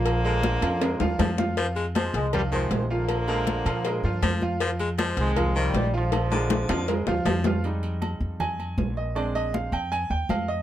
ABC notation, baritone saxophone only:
X:1
M:4/4
L:1/8
Q:1/4=158
K:Fdor
V:1 name="Baritone saxophone" clef=bass
z D,4- D, F,2 | F, A, F,3 E,3 | z D,4- D, F,2 | F, A, F,3 E,3 |
z D,4- D, F,2 | z8 | z8 |]